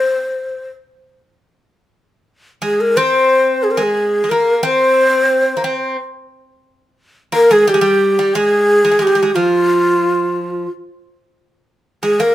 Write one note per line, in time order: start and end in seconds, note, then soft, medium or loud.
0.00 0.67 C5 medium
2.62 2.97 G#3 medium
2.62 2.82 G#4 medium
2.81 2.99 A#4 medium
2.97 3.80 C4 medium
2.97 3.65 C5 medium
3.63 3.72 G#4 medium
3.71 3.78 A#4 medium
3.77 4.23 G#3 medium
3.77 3.83 A#4 medium
3.82 4.31 G#4 medium
4.24 4.31 G#3 soft
4.30 4.63 A#3 medium
4.30 4.65 A#4 medium
4.63 5.56 C4 medium
4.63 5.99 C5 medium
5.57 5.64 A#3 medium
5.64 5.96 C4 medium
7.32 7.50 A#3 medium
7.32 7.53 A#4 loud
7.51 7.67 G#3 medium
7.51 7.71 G#4 loud
7.67 7.74 G3 medium
7.67 8.36 G4 medium
7.74 7.81 G#3 medium
7.81 8.18 G3 medium
8.19 8.35 G3 medium
8.35 8.83 G#3 medium
8.35 9.04 G#4 medium
8.85 8.90 G#3 medium
8.91 8.98 G#3 medium
8.99 9.06 G#3 medium
8.99 9.36 G4 medium
9.07 9.14 G#3 medium
9.15 9.21 G#3 medium
9.23 9.30 G#3 medium
9.35 10.66 F3 medium
9.35 10.69 F4 medium
12.03 12.20 G#3 medium
12.03 12.22 G#4 medium
12.20 12.35 A#3 medium
12.20 12.35 A#4 medium